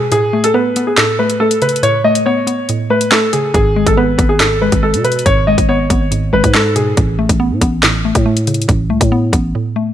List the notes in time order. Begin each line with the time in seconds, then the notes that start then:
Already playing: G#2 B2 G#3 B3
0.11 A2 G#4, closed hi-hat
0.33 A3
0.44 A4, closed hi-hat
0.54 B3 B4
0.76 B3, closed hi-hat
0.87 G#4
0.97 A2 A4, snare, clap, closed hi-hat
1.19 A3 B4
1.30 closed hi-hat
1.40 A3 A4
1.51 closed hi-hat
1.62 C#3 B4, closed hi-hat
1.69 closed hi-hat
1.76 closed hi-hat
1.83 A2 C#5, closed hi-hat
2.04 A3 D#5
2.15 closed hi-hat
2.26 B3 C#5
2.47 B3, closed hi-hat
2.69 A2, closed hi-hat
2.90 A3 B4
3.01 closed hi-hat
3.11 A3 A4, snare, clap, closed hi-hat
3.33 C#3 G#4, closed hi-hat
3.54 G#1 G#2 G#4, kick, closed hi-hat
3.76 G#3
3.86 G#1 A4, kick, closed hi-hat
3.97 B3 B4
4.18 G#1 B3, kick, closed hi-hat
4.29 G#4
4.40 G#2 A4, snare, clap, closed hi-hat
4.62 G#3 B4
4.72 G#1, kick, closed hi-hat
4.83 G#3 A4
4.94 B2, closed hi-hat
5.04 B2 B4, closed hi-hat
5.12 closed hi-hat
5.19 closed hi-hat
5.26 G#1 G#2 C#5, kick, closed hi-hat
5.47 G#3 D#5
5.58 G#1, kick, closed hi-hat
5.69 B3 C#5
5.90 G#1 B3, kick, closed hi-hat
6.11 G#2, closed hi-hat
6.33 G#1 G#3 B4
6.44 G#2, kick, closed hi-hat
6.54 G#3 A4, snare, clap
6.76 B2 G#4, closed hi-hat
6.97 A1 A2, kick, closed hi-hat
7.19 A3
7.29 A1, kick, closed hi-hat
7.40 B3
7.51 A2
7.61 A1 B3, kick, closed hi-hat
7.83 A2, snare, clap, closed hi-hat
8.05 A3
8.15 A2, kick, closed hi-hat
8.26 A3
8.37 closed hi-hat
8.47 C#3, closed hi-hat
8.54 closed hi-hat
8.62 closed hi-hat
8.68 A1 A2, kick, closed hi-hat
8.90 C#2 A3
9.01 A2, kick, closed hi-hat
9.12 B3
9.33 A1 B3, kick, closed hi-hat
9.55 A2
9.76 A3